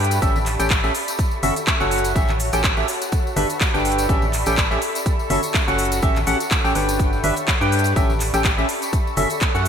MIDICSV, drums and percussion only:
0, 0, Header, 1, 2, 480
1, 0, Start_track
1, 0, Tempo, 483871
1, 1178, Time_signature, 4, 2, 24, 8
1, 9606, End_track
2, 0, Start_track
2, 0, Title_t, "Drums"
2, 44, Note_on_c, 9, 42, 66
2, 111, Note_off_c, 9, 42, 0
2, 111, Note_on_c, 9, 42, 56
2, 112, Note_on_c, 9, 54, 86
2, 113, Note_on_c, 9, 82, 33
2, 210, Note_off_c, 9, 42, 0
2, 211, Note_off_c, 9, 54, 0
2, 212, Note_off_c, 9, 82, 0
2, 219, Note_on_c, 9, 36, 127
2, 219, Note_on_c, 9, 42, 70
2, 221, Note_on_c, 9, 54, 67
2, 221, Note_on_c, 9, 82, 46
2, 318, Note_off_c, 9, 36, 0
2, 318, Note_off_c, 9, 42, 0
2, 320, Note_off_c, 9, 54, 0
2, 320, Note_off_c, 9, 82, 0
2, 354, Note_on_c, 9, 54, 40
2, 354, Note_on_c, 9, 63, 68
2, 453, Note_off_c, 9, 54, 0
2, 454, Note_off_c, 9, 63, 0
2, 458, Note_on_c, 9, 39, 38
2, 459, Note_on_c, 9, 46, 106
2, 460, Note_on_c, 9, 82, 79
2, 557, Note_off_c, 9, 39, 0
2, 558, Note_off_c, 9, 46, 0
2, 560, Note_off_c, 9, 82, 0
2, 591, Note_on_c, 9, 42, 51
2, 593, Note_on_c, 9, 54, 75
2, 593, Note_on_c, 9, 82, 34
2, 690, Note_off_c, 9, 42, 0
2, 692, Note_off_c, 9, 54, 0
2, 692, Note_off_c, 9, 82, 0
2, 697, Note_on_c, 9, 54, 64
2, 698, Note_on_c, 9, 39, 127
2, 699, Note_on_c, 9, 36, 125
2, 699, Note_on_c, 9, 42, 68
2, 701, Note_on_c, 9, 82, 45
2, 797, Note_off_c, 9, 39, 0
2, 797, Note_off_c, 9, 54, 0
2, 798, Note_off_c, 9, 36, 0
2, 798, Note_off_c, 9, 42, 0
2, 800, Note_off_c, 9, 82, 0
2, 830, Note_on_c, 9, 54, 37
2, 929, Note_off_c, 9, 54, 0
2, 939, Note_on_c, 9, 46, 93
2, 941, Note_on_c, 9, 82, 79
2, 1039, Note_off_c, 9, 46, 0
2, 1040, Note_off_c, 9, 82, 0
2, 1071, Note_on_c, 9, 42, 55
2, 1071, Note_on_c, 9, 54, 86
2, 1073, Note_on_c, 9, 82, 34
2, 1170, Note_off_c, 9, 54, 0
2, 1171, Note_off_c, 9, 42, 0
2, 1172, Note_off_c, 9, 82, 0
2, 1178, Note_on_c, 9, 54, 64
2, 1179, Note_on_c, 9, 36, 121
2, 1179, Note_on_c, 9, 42, 66
2, 1181, Note_on_c, 9, 82, 42
2, 1277, Note_off_c, 9, 54, 0
2, 1278, Note_off_c, 9, 36, 0
2, 1278, Note_off_c, 9, 42, 0
2, 1280, Note_off_c, 9, 82, 0
2, 1302, Note_on_c, 9, 54, 43
2, 1401, Note_off_c, 9, 54, 0
2, 1419, Note_on_c, 9, 46, 108
2, 1421, Note_on_c, 9, 82, 73
2, 1424, Note_on_c, 9, 63, 90
2, 1518, Note_off_c, 9, 46, 0
2, 1520, Note_off_c, 9, 82, 0
2, 1523, Note_off_c, 9, 63, 0
2, 1552, Note_on_c, 9, 42, 54
2, 1553, Note_on_c, 9, 82, 32
2, 1558, Note_on_c, 9, 54, 78
2, 1651, Note_off_c, 9, 42, 0
2, 1653, Note_off_c, 9, 82, 0
2, 1657, Note_off_c, 9, 54, 0
2, 1658, Note_on_c, 9, 39, 123
2, 1659, Note_on_c, 9, 36, 125
2, 1659, Note_on_c, 9, 42, 67
2, 1660, Note_on_c, 9, 54, 62
2, 1661, Note_on_c, 9, 82, 42
2, 1757, Note_off_c, 9, 39, 0
2, 1758, Note_off_c, 9, 36, 0
2, 1758, Note_off_c, 9, 42, 0
2, 1759, Note_off_c, 9, 54, 0
2, 1760, Note_off_c, 9, 82, 0
2, 1789, Note_on_c, 9, 54, 44
2, 1793, Note_on_c, 9, 82, 29
2, 1888, Note_off_c, 9, 54, 0
2, 1892, Note_off_c, 9, 82, 0
2, 1899, Note_on_c, 9, 46, 100
2, 1900, Note_on_c, 9, 82, 78
2, 1965, Note_on_c, 9, 42, 66
2, 1998, Note_off_c, 9, 46, 0
2, 2000, Note_off_c, 9, 82, 0
2, 2027, Note_on_c, 9, 54, 78
2, 2032, Note_off_c, 9, 42, 0
2, 2032, Note_on_c, 9, 42, 54
2, 2034, Note_on_c, 9, 82, 33
2, 2127, Note_off_c, 9, 54, 0
2, 2131, Note_off_c, 9, 42, 0
2, 2133, Note_off_c, 9, 82, 0
2, 2139, Note_on_c, 9, 36, 127
2, 2140, Note_on_c, 9, 42, 66
2, 2141, Note_on_c, 9, 54, 64
2, 2142, Note_on_c, 9, 82, 43
2, 2238, Note_off_c, 9, 36, 0
2, 2239, Note_off_c, 9, 42, 0
2, 2240, Note_off_c, 9, 54, 0
2, 2241, Note_off_c, 9, 82, 0
2, 2266, Note_on_c, 9, 54, 41
2, 2268, Note_on_c, 9, 63, 60
2, 2271, Note_on_c, 9, 39, 39
2, 2365, Note_off_c, 9, 54, 0
2, 2367, Note_off_c, 9, 63, 0
2, 2371, Note_off_c, 9, 39, 0
2, 2380, Note_on_c, 9, 46, 111
2, 2381, Note_on_c, 9, 82, 71
2, 2479, Note_off_c, 9, 46, 0
2, 2481, Note_off_c, 9, 82, 0
2, 2507, Note_on_c, 9, 54, 80
2, 2512, Note_on_c, 9, 42, 52
2, 2514, Note_on_c, 9, 82, 33
2, 2606, Note_off_c, 9, 54, 0
2, 2611, Note_off_c, 9, 42, 0
2, 2613, Note_off_c, 9, 82, 0
2, 2616, Note_on_c, 9, 54, 65
2, 2619, Note_on_c, 9, 36, 124
2, 2619, Note_on_c, 9, 39, 126
2, 2620, Note_on_c, 9, 42, 65
2, 2622, Note_on_c, 9, 82, 44
2, 2716, Note_off_c, 9, 54, 0
2, 2718, Note_off_c, 9, 36, 0
2, 2718, Note_off_c, 9, 39, 0
2, 2719, Note_off_c, 9, 42, 0
2, 2721, Note_off_c, 9, 82, 0
2, 2746, Note_on_c, 9, 54, 37
2, 2845, Note_off_c, 9, 54, 0
2, 2859, Note_on_c, 9, 46, 95
2, 2861, Note_on_c, 9, 82, 75
2, 2959, Note_off_c, 9, 46, 0
2, 2961, Note_off_c, 9, 82, 0
2, 2992, Note_on_c, 9, 42, 54
2, 2993, Note_on_c, 9, 54, 84
2, 2994, Note_on_c, 9, 82, 33
2, 3091, Note_off_c, 9, 42, 0
2, 3092, Note_off_c, 9, 54, 0
2, 3093, Note_off_c, 9, 82, 0
2, 3094, Note_on_c, 9, 54, 74
2, 3099, Note_on_c, 9, 36, 127
2, 3100, Note_on_c, 9, 42, 65
2, 3102, Note_on_c, 9, 82, 42
2, 3193, Note_off_c, 9, 54, 0
2, 3198, Note_off_c, 9, 36, 0
2, 3199, Note_off_c, 9, 42, 0
2, 3201, Note_off_c, 9, 82, 0
2, 3242, Note_on_c, 9, 54, 42
2, 3338, Note_on_c, 9, 63, 88
2, 3340, Note_on_c, 9, 46, 111
2, 3342, Note_off_c, 9, 54, 0
2, 3342, Note_on_c, 9, 82, 74
2, 3437, Note_off_c, 9, 63, 0
2, 3439, Note_off_c, 9, 46, 0
2, 3441, Note_off_c, 9, 82, 0
2, 3468, Note_on_c, 9, 54, 90
2, 3472, Note_on_c, 9, 42, 48
2, 3474, Note_on_c, 9, 82, 31
2, 3567, Note_off_c, 9, 54, 0
2, 3571, Note_off_c, 9, 42, 0
2, 3573, Note_off_c, 9, 82, 0
2, 3579, Note_on_c, 9, 36, 124
2, 3579, Note_on_c, 9, 39, 118
2, 3579, Note_on_c, 9, 42, 66
2, 3579, Note_on_c, 9, 54, 73
2, 3581, Note_on_c, 9, 82, 42
2, 3678, Note_off_c, 9, 36, 0
2, 3678, Note_off_c, 9, 39, 0
2, 3678, Note_off_c, 9, 54, 0
2, 3679, Note_off_c, 9, 42, 0
2, 3680, Note_off_c, 9, 82, 0
2, 3714, Note_on_c, 9, 82, 31
2, 3716, Note_on_c, 9, 54, 44
2, 3813, Note_off_c, 9, 82, 0
2, 3815, Note_off_c, 9, 54, 0
2, 3819, Note_on_c, 9, 46, 101
2, 3821, Note_on_c, 9, 82, 75
2, 3885, Note_on_c, 9, 42, 65
2, 3919, Note_off_c, 9, 46, 0
2, 3921, Note_off_c, 9, 82, 0
2, 3953, Note_off_c, 9, 42, 0
2, 3953, Note_on_c, 9, 42, 51
2, 3955, Note_on_c, 9, 54, 88
2, 3955, Note_on_c, 9, 82, 33
2, 4052, Note_off_c, 9, 42, 0
2, 4054, Note_off_c, 9, 54, 0
2, 4054, Note_off_c, 9, 82, 0
2, 4059, Note_on_c, 9, 36, 123
2, 4060, Note_on_c, 9, 42, 62
2, 4062, Note_on_c, 9, 82, 43
2, 4158, Note_off_c, 9, 36, 0
2, 4160, Note_off_c, 9, 42, 0
2, 4161, Note_off_c, 9, 82, 0
2, 4186, Note_on_c, 9, 54, 42
2, 4187, Note_on_c, 9, 63, 61
2, 4285, Note_off_c, 9, 54, 0
2, 4286, Note_off_c, 9, 63, 0
2, 4299, Note_on_c, 9, 39, 36
2, 4300, Note_on_c, 9, 46, 109
2, 4302, Note_on_c, 9, 82, 77
2, 4399, Note_off_c, 9, 39, 0
2, 4399, Note_off_c, 9, 46, 0
2, 4401, Note_off_c, 9, 82, 0
2, 4425, Note_on_c, 9, 54, 87
2, 4432, Note_on_c, 9, 42, 50
2, 4434, Note_on_c, 9, 82, 32
2, 4525, Note_off_c, 9, 54, 0
2, 4531, Note_off_c, 9, 42, 0
2, 4533, Note_off_c, 9, 82, 0
2, 4539, Note_on_c, 9, 36, 126
2, 4539, Note_on_c, 9, 39, 122
2, 4539, Note_on_c, 9, 54, 67
2, 4540, Note_on_c, 9, 42, 63
2, 4542, Note_on_c, 9, 82, 42
2, 4638, Note_off_c, 9, 36, 0
2, 4638, Note_off_c, 9, 54, 0
2, 4639, Note_off_c, 9, 39, 0
2, 4639, Note_off_c, 9, 42, 0
2, 4641, Note_off_c, 9, 82, 0
2, 4675, Note_on_c, 9, 54, 36
2, 4775, Note_off_c, 9, 54, 0
2, 4779, Note_on_c, 9, 46, 97
2, 4781, Note_on_c, 9, 82, 74
2, 4879, Note_off_c, 9, 46, 0
2, 4880, Note_off_c, 9, 82, 0
2, 4912, Note_on_c, 9, 42, 52
2, 4914, Note_on_c, 9, 82, 33
2, 4919, Note_on_c, 9, 54, 91
2, 5011, Note_off_c, 9, 42, 0
2, 5013, Note_off_c, 9, 82, 0
2, 5018, Note_off_c, 9, 54, 0
2, 5019, Note_on_c, 9, 36, 126
2, 5020, Note_on_c, 9, 42, 65
2, 5020, Note_on_c, 9, 54, 75
2, 5022, Note_on_c, 9, 82, 42
2, 5118, Note_off_c, 9, 36, 0
2, 5119, Note_off_c, 9, 42, 0
2, 5119, Note_off_c, 9, 54, 0
2, 5121, Note_off_c, 9, 82, 0
2, 5152, Note_on_c, 9, 54, 44
2, 5251, Note_off_c, 9, 54, 0
2, 5258, Note_on_c, 9, 63, 82
2, 5259, Note_on_c, 9, 46, 116
2, 5261, Note_on_c, 9, 82, 77
2, 5357, Note_off_c, 9, 63, 0
2, 5359, Note_off_c, 9, 46, 0
2, 5360, Note_off_c, 9, 82, 0
2, 5384, Note_on_c, 9, 54, 86
2, 5392, Note_on_c, 9, 42, 52
2, 5394, Note_on_c, 9, 82, 32
2, 5484, Note_off_c, 9, 54, 0
2, 5491, Note_off_c, 9, 42, 0
2, 5493, Note_off_c, 9, 82, 0
2, 5499, Note_on_c, 9, 36, 127
2, 5499, Note_on_c, 9, 39, 113
2, 5499, Note_on_c, 9, 42, 63
2, 5501, Note_on_c, 9, 82, 44
2, 5506, Note_on_c, 9, 54, 67
2, 5598, Note_off_c, 9, 36, 0
2, 5598, Note_off_c, 9, 39, 0
2, 5599, Note_off_c, 9, 42, 0
2, 5601, Note_off_c, 9, 82, 0
2, 5606, Note_off_c, 9, 54, 0
2, 5634, Note_on_c, 9, 54, 39
2, 5634, Note_on_c, 9, 82, 33
2, 5733, Note_off_c, 9, 54, 0
2, 5733, Note_off_c, 9, 82, 0
2, 5740, Note_on_c, 9, 46, 96
2, 5742, Note_on_c, 9, 82, 75
2, 5806, Note_on_c, 9, 42, 62
2, 5839, Note_off_c, 9, 46, 0
2, 5841, Note_off_c, 9, 82, 0
2, 5869, Note_on_c, 9, 54, 94
2, 5873, Note_off_c, 9, 42, 0
2, 5873, Note_on_c, 9, 42, 53
2, 5875, Note_on_c, 9, 82, 32
2, 5968, Note_off_c, 9, 54, 0
2, 5972, Note_off_c, 9, 42, 0
2, 5974, Note_off_c, 9, 82, 0
2, 5974, Note_on_c, 9, 54, 73
2, 5979, Note_on_c, 9, 36, 127
2, 5980, Note_on_c, 9, 42, 65
2, 5982, Note_on_c, 9, 82, 42
2, 6074, Note_off_c, 9, 54, 0
2, 6079, Note_off_c, 9, 36, 0
2, 6079, Note_off_c, 9, 42, 0
2, 6081, Note_off_c, 9, 82, 0
2, 6111, Note_on_c, 9, 39, 38
2, 6113, Note_on_c, 9, 54, 45
2, 6114, Note_on_c, 9, 82, 31
2, 6117, Note_on_c, 9, 63, 60
2, 6211, Note_off_c, 9, 39, 0
2, 6212, Note_off_c, 9, 54, 0
2, 6213, Note_off_c, 9, 82, 0
2, 6216, Note_off_c, 9, 63, 0
2, 6220, Note_on_c, 9, 46, 109
2, 6222, Note_on_c, 9, 82, 74
2, 6319, Note_off_c, 9, 46, 0
2, 6321, Note_off_c, 9, 82, 0
2, 6352, Note_on_c, 9, 42, 49
2, 6353, Note_on_c, 9, 54, 75
2, 6354, Note_on_c, 9, 82, 32
2, 6451, Note_off_c, 9, 42, 0
2, 6452, Note_off_c, 9, 54, 0
2, 6453, Note_off_c, 9, 82, 0
2, 6457, Note_on_c, 9, 54, 70
2, 6459, Note_on_c, 9, 36, 127
2, 6459, Note_on_c, 9, 39, 119
2, 6460, Note_on_c, 9, 42, 65
2, 6461, Note_on_c, 9, 82, 45
2, 6556, Note_off_c, 9, 54, 0
2, 6558, Note_off_c, 9, 39, 0
2, 6559, Note_off_c, 9, 36, 0
2, 6559, Note_off_c, 9, 42, 0
2, 6561, Note_off_c, 9, 82, 0
2, 6594, Note_on_c, 9, 54, 41
2, 6693, Note_off_c, 9, 54, 0
2, 6699, Note_on_c, 9, 46, 97
2, 6701, Note_on_c, 9, 82, 75
2, 6798, Note_off_c, 9, 46, 0
2, 6800, Note_off_c, 9, 82, 0
2, 6832, Note_on_c, 9, 42, 50
2, 6832, Note_on_c, 9, 54, 89
2, 6834, Note_on_c, 9, 82, 34
2, 6931, Note_off_c, 9, 42, 0
2, 6931, Note_off_c, 9, 54, 0
2, 6933, Note_off_c, 9, 82, 0
2, 6939, Note_on_c, 9, 36, 124
2, 6940, Note_on_c, 9, 42, 65
2, 6941, Note_on_c, 9, 82, 45
2, 7038, Note_off_c, 9, 36, 0
2, 7039, Note_off_c, 9, 42, 0
2, 7041, Note_off_c, 9, 82, 0
2, 7071, Note_on_c, 9, 54, 38
2, 7170, Note_off_c, 9, 54, 0
2, 7179, Note_on_c, 9, 46, 105
2, 7180, Note_on_c, 9, 63, 84
2, 7181, Note_on_c, 9, 82, 82
2, 7279, Note_off_c, 9, 46, 0
2, 7279, Note_off_c, 9, 63, 0
2, 7280, Note_off_c, 9, 82, 0
2, 7305, Note_on_c, 9, 54, 80
2, 7312, Note_on_c, 9, 42, 51
2, 7314, Note_on_c, 9, 82, 32
2, 7405, Note_off_c, 9, 54, 0
2, 7411, Note_off_c, 9, 42, 0
2, 7413, Note_off_c, 9, 82, 0
2, 7416, Note_on_c, 9, 54, 63
2, 7419, Note_on_c, 9, 36, 121
2, 7419, Note_on_c, 9, 39, 116
2, 7420, Note_on_c, 9, 42, 66
2, 7422, Note_on_c, 9, 82, 47
2, 7516, Note_off_c, 9, 54, 0
2, 7518, Note_off_c, 9, 36, 0
2, 7518, Note_off_c, 9, 39, 0
2, 7519, Note_off_c, 9, 42, 0
2, 7521, Note_off_c, 9, 82, 0
2, 7550, Note_on_c, 9, 54, 36
2, 7554, Note_on_c, 9, 82, 33
2, 7649, Note_off_c, 9, 54, 0
2, 7653, Note_off_c, 9, 82, 0
2, 7661, Note_on_c, 9, 46, 93
2, 7662, Note_on_c, 9, 82, 80
2, 7726, Note_on_c, 9, 42, 61
2, 7760, Note_off_c, 9, 46, 0
2, 7762, Note_off_c, 9, 82, 0
2, 7778, Note_on_c, 9, 54, 82
2, 7793, Note_off_c, 9, 42, 0
2, 7793, Note_on_c, 9, 42, 51
2, 7795, Note_on_c, 9, 82, 35
2, 7877, Note_off_c, 9, 54, 0
2, 7892, Note_off_c, 9, 42, 0
2, 7894, Note_off_c, 9, 82, 0
2, 7899, Note_on_c, 9, 36, 126
2, 7899, Note_on_c, 9, 42, 62
2, 7901, Note_on_c, 9, 82, 47
2, 7906, Note_on_c, 9, 54, 67
2, 7998, Note_off_c, 9, 36, 0
2, 7999, Note_off_c, 9, 42, 0
2, 8001, Note_off_c, 9, 82, 0
2, 8005, Note_off_c, 9, 54, 0
2, 8029, Note_on_c, 9, 63, 56
2, 8031, Note_on_c, 9, 54, 42
2, 8129, Note_off_c, 9, 63, 0
2, 8131, Note_off_c, 9, 54, 0
2, 8139, Note_on_c, 9, 39, 34
2, 8139, Note_on_c, 9, 46, 105
2, 8141, Note_on_c, 9, 82, 79
2, 8238, Note_off_c, 9, 39, 0
2, 8239, Note_off_c, 9, 46, 0
2, 8240, Note_off_c, 9, 82, 0
2, 8269, Note_on_c, 9, 54, 79
2, 8271, Note_on_c, 9, 42, 47
2, 8273, Note_on_c, 9, 82, 34
2, 8369, Note_off_c, 9, 54, 0
2, 8370, Note_off_c, 9, 42, 0
2, 8372, Note_off_c, 9, 82, 0
2, 8378, Note_on_c, 9, 39, 112
2, 8378, Note_on_c, 9, 42, 61
2, 8379, Note_on_c, 9, 36, 123
2, 8380, Note_on_c, 9, 54, 71
2, 8380, Note_on_c, 9, 82, 44
2, 8477, Note_off_c, 9, 39, 0
2, 8478, Note_off_c, 9, 36, 0
2, 8478, Note_off_c, 9, 42, 0
2, 8479, Note_off_c, 9, 54, 0
2, 8479, Note_off_c, 9, 82, 0
2, 8515, Note_on_c, 9, 54, 38
2, 8614, Note_off_c, 9, 54, 0
2, 8618, Note_on_c, 9, 46, 95
2, 8620, Note_on_c, 9, 82, 83
2, 8718, Note_off_c, 9, 46, 0
2, 8719, Note_off_c, 9, 82, 0
2, 8751, Note_on_c, 9, 42, 53
2, 8752, Note_on_c, 9, 82, 34
2, 8759, Note_on_c, 9, 54, 80
2, 8850, Note_off_c, 9, 42, 0
2, 8852, Note_off_c, 9, 82, 0
2, 8857, Note_off_c, 9, 54, 0
2, 8857, Note_on_c, 9, 54, 64
2, 8858, Note_on_c, 9, 36, 119
2, 8859, Note_on_c, 9, 42, 69
2, 8861, Note_on_c, 9, 82, 46
2, 8956, Note_off_c, 9, 54, 0
2, 8958, Note_off_c, 9, 36, 0
2, 8958, Note_off_c, 9, 42, 0
2, 8960, Note_off_c, 9, 82, 0
2, 9000, Note_on_c, 9, 54, 35
2, 9098, Note_on_c, 9, 46, 103
2, 9098, Note_on_c, 9, 63, 75
2, 9099, Note_off_c, 9, 54, 0
2, 9100, Note_on_c, 9, 82, 81
2, 9197, Note_off_c, 9, 46, 0
2, 9197, Note_off_c, 9, 63, 0
2, 9199, Note_off_c, 9, 82, 0
2, 9224, Note_on_c, 9, 54, 81
2, 9231, Note_on_c, 9, 42, 51
2, 9233, Note_on_c, 9, 82, 35
2, 9323, Note_off_c, 9, 54, 0
2, 9330, Note_off_c, 9, 42, 0
2, 9330, Note_on_c, 9, 54, 63
2, 9332, Note_off_c, 9, 82, 0
2, 9338, Note_on_c, 9, 36, 116
2, 9338, Note_on_c, 9, 39, 112
2, 9339, Note_on_c, 9, 42, 64
2, 9341, Note_on_c, 9, 82, 47
2, 9429, Note_off_c, 9, 54, 0
2, 9437, Note_off_c, 9, 39, 0
2, 9438, Note_off_c, 9, 36, 0
2, 9438, Note_off_c, 9, 42, 0
2, 9440, Note_off_c, 9, 82, 0
2, 9473, Note_on_c, 9, 82, 33
2, 9478, Note_on_c, 9, 54, 37
2, 9572, Note_off_c, 9, 82, 0
2, 9577, Note_off_c, 9, 54, 0
2, 9606, End_track
0, 0, End_of_file